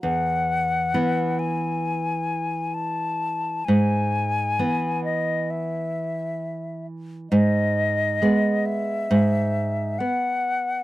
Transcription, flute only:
X:1
M:4/4
L:1/8
Q:1/4=66
K:E
V:1 name="Flute"
f3 g3 a2 | g3 d e3 z | d3 e3 f2 |]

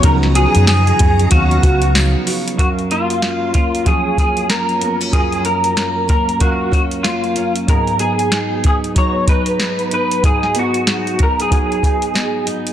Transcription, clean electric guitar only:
X:1
M:4/4
L:1/16
Q:"Swing 16ths" 1/4=94
K:F#
V:1 name="Clean electric guitar"
A2 G2 G4 F4 z4 | F2 E4 E2 G2 G2 A3 z | G2 A4 A2 F2 F2 E3 z | A2 G4 G2 c2 B4 B2 |
G2 F4 A G6- G z2 |]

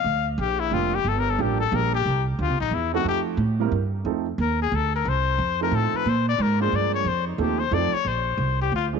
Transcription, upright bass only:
X:1
M:3/4
L:1/8
Q:"Swing" 1/4=180
K:Fmix
V:1 name="Upright bass" clef=bass
D,,2 B,,,2 F,,,2 | G,,,2 A,,,2 B,,,2 | C,,2 (3D,, C,, B,,, =E,,2 | F,,2 A,,2 G,,2 |
F,,2 E,,2 D,,2 | C,,2 F,,2 A,, z | B,,2 _A,,2 G,,2 | F,,2 E,,2 F,, z |
B,,,2 C,,2 D,,2 |]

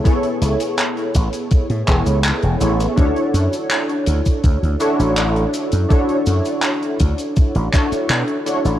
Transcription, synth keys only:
X:1
M:4/4
L:1/8
Q:1/4=82
K:Dlyd
V:1 name="Synth keys"
[B,EGAc]4- [B,EGAc] [B,EGAc]2 [B,EGAc] | [DEFAc]4- [DEFAc] [DEFAc] [DEFAc]2 | [DEFAc]4- [DEFAc] [DEFAc]2 [DEFAc] |]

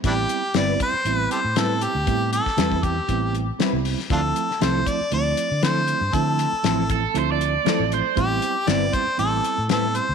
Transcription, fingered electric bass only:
X:1
M:4/4
L:1/16
Q:"Swing 16ths" 1/4=118
K:Am
V:1 name="Fingered electric bass" clef=bass
A,,,2 z2 G,,,2 z2 A,,,2 z A,,4 D,, | A,,3 z E,,4 A,,,4 z C,,2 z | D,,2 z2 C,,2 z2 D,,2 z D,4 G,, | D,3 z A,,,4 D,,4 z A,,,2 z |
A,,,2 z2 G,,,2 z2 A,,,2 z A,,4 D,, |]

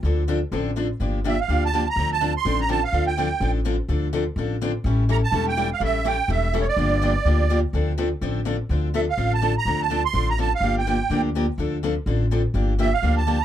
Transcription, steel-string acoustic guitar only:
X:1
M:4/4
L:1/8
Q:"Swing" 1/4=250
K:Dm
V:1 name="Steel-string acoustic guitar"
[D,F,CDA] z [D,F,CDA] z [D,F,CDA] z [D,F,CDA] z | [D,F,B,DG] z [D,F,B,DG] z [D,F,B,DG] z [D,F,B,DG] z | [D,F,CDA] z [D,F,CDA] z [D,F,CDA] z [D,F,CDA] z | [D,F,CDA] z [D,F,CDA] z [D,F,CDA] z [D,F,CDA] z |
[D,F,CDA] z [D,F,CDA] z [D,F,CDA] z [D,F,CDA] z | [E,G,^CEA] z [E,G,CEA] z [E,G,CEA] z [E,G,CEA] z | [E,G,^CEA] z [E,G,CEA] z [E,G,CEA] z [E,G,CEA] z | [D,F,B,DG] z [D,F,B,DG] z [D,F,B,DG] z [D,F,B,DG] z |
[D,F,CDA] z [D,F,CDA] z [D,F,CDA] z [D,F,CDA] z | [D,F,CDA] z [D,F,CDA] z [D,F,CDA] z [D,F,CDA] z | [D,F,CDA] z [D,F,CDA] z [D,F,CDA] z [D,F,CDA] z | [D,F,B,DG] z [D,F,B,DG] z [D,F,B,DG] z [D,F,B,DG] z |
[D,F,CDA] z [D,F,CDA] z [D,F,CDA] z [D,F,CDA] z | [D,F,B,DG] z [D,F,B,DG] z [D,F,B,DG] z [D,F,B,DG] z |]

